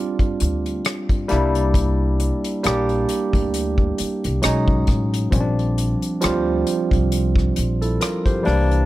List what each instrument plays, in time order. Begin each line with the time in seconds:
Already playing: tine electric piano G3 C4 D4 F4
0.19 kick, closed hi-hat
0.40 upright bass D2, closed hi-hat
0.66 closed hi-hat
0.85 cross-stick, closed hi-hat
1.09 kick, closed hi-hat
1.28 upright bass C2, tine electric piano G3 A#3 D4 E4, cross-stick, closed hi-hat
1.55 closed hi-hat
1.74 kick, closed hi-hat
2.20 closed hi-hat
2.44 closed hi-hat
2.63 upright bass A#1, tine electric piano G3 A#3 D4 G4, cross-stick, closed hi-hat
2.89 closed hi-hat
3.09 closed hi-hat
3.33 upright bass D2, kick, closed hi-hat
3.54 closed hi-hat
3.78 kick
3.98 muted upright bass stroke, closed hi-hat
4.24 upright bass C2, closed hi-hat
4.42 upright bass B1, tine electric piano F#3 G#3 C#4 D#4, cross-stick, closed hi-hat
4.68 kick
4.87 upright bass A1, kick, cross-stick, closed hi-hat
5.14 closed hi-hat
5.31 upright bass A#1, tine electric piano F3 G3 C4 C#4, kick, closed hi-hat
5.40 tine electric piano D4
5.59 closed hi-hat
5.78 closed hi-hat
6.02 closed hi-hat
6.21 upright bass D2, tine electric piano F3 G3 C4 F4, cross-stick, closed hi-hat
6.67 closed hi-hat
6.91 upright bass C2, kick, closed hi-hat
7.12 closed hi-hat
7.36 kick, cross-stick
7.56 upright bass A#1, closed hi-hat
7.82 tine electric piano E4 A4, closed hi-hat
8.01 tine electric piano F4 A#4, cross-stick, closed hi-hat
8.26 tine electric piano G4 C5, kick, closed hi-hat
8.43 tine electric piano E3 G3 A#3 D4, open hi-hat
8.47 upright bass C2, cross-stick
8.71 closed hi-hat